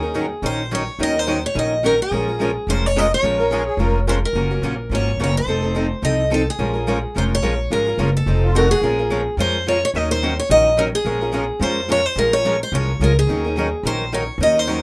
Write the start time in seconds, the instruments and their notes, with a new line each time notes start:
Already playing: upright bass D#2, steel-string acoustic guitar G#4
0.02 steel-string acoustic guitar C#4 D#4 A#4
0.14 steel-string acoustic guitar D#3 F#3 C#4 D#4 A#4
0.42 upright bass A#1, steel-string acoustic guitar D#3 F#3 C#4 D#4 A#4 C5
0.71 steel-string acoustic guitar D#3 F#3 C#4 D#4 A#4 C#5
0.99 upright bass D#2, steel-string acoustic guitar D#3 F#3 C#4 D#4 A#4
1.03 steel-string acoustic guitar D#5
1.15 steel-string acoustic guitar C#4 D#4 A#4 C5
1.27 steel-string acoustic guitar D#3 F#3 C#4 D#4 A#4
1.46 steel-string acoustic guitar C#5
1.55 upright bass A#1, steel-string acoustic guitar D#3 F#3 C#4 D#4 A#4 D#5
1.84 steel-string acoustic guitar D#3 F#3 C#4 D#4 A#4
2.02 steel-string acoustic guitar G#4
2.11 upright bass A#1, steel-string acoustic guitar F3 G#3 C#4 F4 A#4
2.28 steel-string acoustic guitar C#4 F4 A#4
2.41 steel-string acoustic guitar F3 G#3 C#4 F4 A#4
2.67 upright bass F1, steel-string acoustic guitar F3 G#3 C#4 F4 A#4 C5
2.86 steel-string acoustic guitar C#5
2.96 steel-string acoustic guitar F3 G#3 C#4 F4 A#4 D#5
3.14 steel-string acoustic guitar C#5
3.23 upright bass A#1, steel-string acoustic guitar F3 G#3 C#4 F4 A#4
3.38 steel-string acoustic guitar C#4 F4 A#4, accordion A#4
3.50 steel-string acoustic guitar F3 G#3 C#4 F4 A#4, accordion G#4
3.66 accordion G#4
3.77 upright bass F1, steel-string acoustic guitar F3 G#3 C#4 F4 A#4, accordion A#4
4.07 steel-string acoustic guitar F3 G#3 C#4 F4 A#4 C5
4.25 steel-string acoustic guitar A#4
4.33 upright bass F#1, steel-string acoustic guitar C#3 F3 F#3 A#3 C#4 F4 F#4 A#4
4.51 steel-string acoustic guitar A#3 C#4 F#4
4.62 upright bass A#1, steel-string acoustic guitar C#3 F3 F#3 A#3 C#4 F4 F#4 A#4
4.90 upright bass G#1, steel-string acoustic guitar C#3 F3 F#3 A#3 C#4 F4 F#4 A#4
4.95 steel-string acoustic guitar C#5
5.17 upright bass F#1, steel-string acoustic guitar C#3 F3 F#3 A#3 C#4 F4 F#4 A#4
5.24 steel-string acoustic guitar C#5
5.37 steel-string acoustic guitar C5
5.46 upright bass F1, steel-string acoustic guitar F3 C4 D#4 A4
5.62 steel-string acoustic guitar C4 D#4 A4
5.75 steel-string acoustic guitar F3 C4 D#4 A4
6.02 upright bass C2, steel-string acoustic guitar F3 C4 D#4 A4 D#5
6.31 steel-string acoustic guitar F3 C4 D#4 A4
6.50 steel-string acoustic guitar G#4
6.59 upright bass A#1, steel-string acoustic guitar F3 G#3 C#4 F4 A#4
6.74 steel-string acoustic guitar C#4 F4 A#4
6.87 steel-string acoustic guitar F3 G#3 C#4 F4 A#4
7.16 upright bass F1, steel-string acoustic guitar F3 G#3 C#4 F4 A#4 C5
7.35 steel-string acoustic guitar C#5
7.42 upright bass A#1, steel-string acoustic guitar F3 G#3 C#4 F4 A#4
7.71 upright bass G#1, steel-string acoustic guitar F3 G#3 C#4 F4 A#4
7.87 steel-string acoustic guitar C#4 F4 A#4
7.98 upright bass F#1, steel-string acoustic guitar F3 G#3 C#4 F4 A#4
8.17 steel-string acoustic guitar A4
8.26 upright bass F1, steel-string acoustic guitar F3 C4 D#4 A4
8.44 accordion F4
8.55 steel-string acoustic guitar F3 C4 D#4 A4 A#4, accordion F#4
8.71 steel-string acoustic guitar G#4
8.82 upright bass A#1, steel-string acoustic guitar F3 G#3 C#4 F4 A#4
8.99 steel-string acoustic guitar C#4 F4 A#4
9.10 steel-string acoustic guitar F3 G#3 C#4 F4 A#4
9.37 upright bass F2, steel-string acoustic guitar F3 G#3 C#4 F4 A#4 C5
9.68 steel-string acoustic guitar F3 G#3 C#4 F4 A#4 C#5
9.85 steel-string acoustic guitar C#5
9.94 upright bass D#2, steel-string acoustic guitar D#3 F#3 C#4 D#4 A#4 D#5
10.11 steel-string acoustic guitar C#4 D#4 A#4 C5
10.23 steel-string acoustic guitar D#3 F#3 C#4 D#4 A#4
10.39 steel-string acoustic guitar C#5
10.50 upright bass A#1, steel-string acoustic guitar D#3 F#3 C#4 D#4 A#4 D#5
10.77 steel-string acoustic guitar D#3 F#3 C#4 D#4 A#4
10.95 steel-string acoustic guitar G#4
11.05 upright bass A#1, steel-string acoustic guitar F3 G#3 C#4 F4 A#4
11.21 steel-string acoustic guitar C#4 F4 A#4
11.33 steel-string acoustic guitar F3 G#3 C#4 F4 A#4
11.60 upright bass F2, steel-string acoustic guitar F3 G#3 C#4 F4 A#4 C5
11.89 steel-string acoustic guitar F3 G#3 C#4 F4 A#4 C#5
12.06 steel-string acoustic guitar C5
12.16 upright bass A#1, steel-string acoustic guitar F3 G#3 C#4 F4 A#4
12.32 steel-string acoustic guitar C#4 F4 A#4 C#5
12.45 steel-string acoustic guitar F3 G#3 C#4 F4 A#4
12.63 steel-string acoustic guitar C5
12.72 upright bass C2, steel-string acoustic guitar F3 G#3 C#4 F4 A#4 C#5
13.00 upright bass C#2, steel-string acoustic guitar F3 G#3 C#4 F4 A#4
13.04 steel-string acoustic guitar A#4
13.19 steel-string acoustic guitar G#4
13.27 upright bass D#2, steel-string acoustic guitar D#3 F#3 C#4 D#4 A#4
13.44 steel-string acoustic guitar C#4 D#4 A#4
13.57 steel-string acoustic guitar D#3 F#3 C#4 D#4 A#4
13.83 upright bass A#1, steel-string acoustic guitar D#3 F#3 C#4 D#4 A#4 C5
14.12 steel-string acoustic guitar D#3 F#3 C#4 D#4 A#4 C#5
14.38 upright bass D#2, steel-string acoustic guitar D#3 F#3 C#4 D#4 A#4
14.43 steel-string acoustic guitar D#5
14.55 steel-string acoustic guitar C#4 D#4 A#4
14.59 steel-string acoustic guitar C5
14.67 steel-string acoustic guitar D#3 F#3 C#4 D#4 A#4